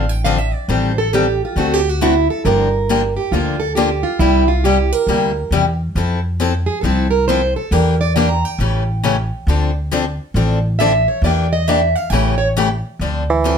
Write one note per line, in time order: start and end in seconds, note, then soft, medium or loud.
0.00 0.51 A1 medium
0.09 0.24 G5 medium
0.24 0.37 D3 medium
0.24 0.37 F3 medium
0.24 0.37 C4 medium
0.24 0.38 D4 medium
0.24 0.37 A4 loud
0.24 0.38 F5 medium
0.38 0.54 E5 medium
0.54 0.68 D5 medium
0.68 1.39 A1 medium
0.68 0.91 D#3 medium
0.68 0.91 G3 medium
0.68 0.92 C4 medium
0.68 0.92 G4 medium
0.68 0.92 A4 medium
0.68 0.97 C5 medium
0.98 1.13 A4 medium
1.13 1.25 D#3 medium
1.13 1.25 G3 medium
1.13 1.25 C4 medium
1.13 1.41 G4 medium
1.13 1.26 G4 medium
1.13 1.25 A4 medium
1.45 1.58 F4 medium
1.56 2.26 D2 medium
1.56 1.79 D3 medium
1.56 1.79 A3 medium
1.56 1.79 C4 medium
1.56 1.80 F#4 medium
1.56 1.74 F#4 medium
1.56 1.80 A4 medium
1.74 1.89 G4 medium
1.89 2.02 F#4 medium
2.01 2.13 D3 medium
2.01 2.13 A3 medium
2.01 2.13 C4 loud
2.01 2.29 E4 medium
2.01 2.13 F#4 medium
2.01 2.13 A4 medium
2.30 2.45 A4 medium
2.45 3.15 G1 medium
2.45 2.67 D3 medium
2.45 2.67 F3 medium
2.45 2.68 A#3 medium
2.45 2.68 D4 medium
2.45 2.68 G4 medium
2.45 3.14 A#4 medium
2.89 3.01 D3 medium
2.89 3.01 F3 medium
2.89 3.01 A#3 medium
2.89 3.01 D4 medium
2.89 3.01 G4 medium
3.17 3.32 G4 medium
3.31 4.02 D2 medium
3.31 3.55 D3 medium
3.31 3.55 F3 medium
3.31 3.55 A#3 medium
3.31 3.55 D4 medium
3.31 3.60 F4 medium
3.31 3.56 G4 medium
3.60 3.75 A4 medium
3.75 3.88 D3 medium
3.75 3.88 F3 medium
3.75 3.89 A#3 medium
3.75 3.89 D4 medium
3.75 4.04 G4 medium
3.75 3.89 G4 medium
4.03 4.19 F4 medium
4.19 4.90 C2 medium
4.19 4.42 C3 medium
4.19 4.43 G3 medium
4.19 4.43 A#3 medium
4.19 4.48 E4 medium
4.19 4.43 E4 medium
4.19 4.43 G4 medium
4.48 4.63 F4 medium
4.64 4.76 C3 medium
4.64 4.76 G3 medium
4.64 4.77 A#3 medium
4.64 4.77 E4 medium
4.64 4.93 G4 medium
4.64 4.77 G4 medium
4.93 5.52 A#4 medium
5.07 5.45 D2 medium
5.07 5.30 C3 medium
5.07 5.31 G3 medium
5.07 5.31 A#3 medium
5.07 5.31 E4 medium
5.07 5.31 G4 medium
5.51 5.89 E2 medium
5.51 5.64 C3 medium
5.51 5.64 G3 medium
5.51 5.64 A#3 medium
5.51 5.64 E4 medium
5.51 5.64 G4 medium
5.95 6.66 F2 medium
5.95 6.18 F3 medium
5.95 6.18 C4 medium
5.95 6.19 E4 medium
5.95 6.19 A4 medium
6.40 6.52 F3 medium
6.40 6.52 C4 medium
6.40 6.52 E4 medium
6.40 6.52 A4 medium
6.66 6.81 G#4 medium
6.81 7.54 C2 medium
6.81 7.06 F3 medium
6.81 7.06 C4 medium
6.81 7.07 E4 medium
6.81 7.10 A4 medium
6.81 7.07 A4 medium
7.11 7.26 A#4 medium
7.28 7.40 F3 medium
7.28 7.40 C4 medium
7.28 7.40 E4 medium
7.28 7.41 A4 medium
7.28 7.55 C5 medium
7.56 7.73 A4 medium
7.71 8.42 E2 medium
7.71 7.94 E3 medium
7.71 7.94 A#3 medium
7.71 7.94 D4 medium
7.71 7.94 G4 medium
7.71 8.00 A#4 medium
8.01 8.15 D5 medium
8.16 8.27 E3 medium
8.16 8.28 A#3 medium
8.16 8.28 D4 medium
8.16 8.28 G4 medium
8.16 8.28 G5 medium
8.29 8.45 A#5 medium
8.45 9.57 G5 medium
8.58 9.29 A1 medium
8.58 8.82 C#3 medium
8.58 8.82 E3 medium
8.58 8.82 A3 medium
8.58 8.82 C#4 medium
8.58 8.82 G4 medium
9.04 9.15 C#3 medium
9.04 9.15 E3 medium
9.04 9.16 A3 medium
9.04 9.16 C#4 loud
9.04 9.16 G4 loud
9.47 10.17 D2 medium
9.47 9.70 D3 medium
9.47 9.70 F3 medium
9.47 9.70 C4 medium
9.47 9.71 D4 medium
9.47 9.71 A4 medium
9.91 10.03 D3 medium
9.91 10.03 F3 medium
9.91 10.03 C4 loud
9.91 10.04 D4 medium
9.91 10.04 A4 loud
10.34 11.05 A1 medium
10.34 10.58 D3 medium
10.34 10.58 F3 medium
10.34 10.58 C4 medium
10.34 10.58 D4 medium
10.34 10.58 A4 medium
10.79 10.91 D3 medium
10.79 10.91 F3 medium
10.79 10.91 C4 medium
10.79 10.92 D4 loud
10.79 10.92 A4 loud
10.79 11.07 E5 medium
11.08 11.23 C#5 medium
11.22 11.93 E2 medium
11.22 11.46 E3 medium
11.22 11.46 A#3 medium
11.22 11.46 D4 medium
11.22 11.46 G4 medium
11.22 11.51 D5 medium
11.53 11.69 D#5 medium
11.68 11.79 E3 medium
11.68 11.79 A#3 medium
11.68 11.80 D4 medium
11.68 11.80 G4 loud
11.68 11.96 E5 medium
11.96 12.10 F5 medium
12.10 12.81 A1 medium
12.10 12.34 C#3 medium
12.10 12.34 E3 medium
12.10 12.34 A3 medium
12.10 12.34 C#4 medium
12.10 12.34 G4 medium
12.10 12.38 G5 medium
12.38 12.48 C#5 medium
12.57 12.68 C#3 medium
12.57 12.68 E3 medium
12.57 12.68 A3 medium
12.57 12.68 C#4 medium
12.57 12.68 G4 loud
12.99 13.58 D2 medium
12.99 13.22 D3 medium
12.99 13.22 F3 medium
12.99 13.23 C4 medium
12.99 13.23 D4 medium
12.99 13.23 A4 medium
13.30 13.58 E3 loud
13.44 13.55 D3 medium
13.44 13.56 F3 medium
13.44 13.56 C4 medium
13.44 13.56 D4 medium
13.44 13.56 A4 medium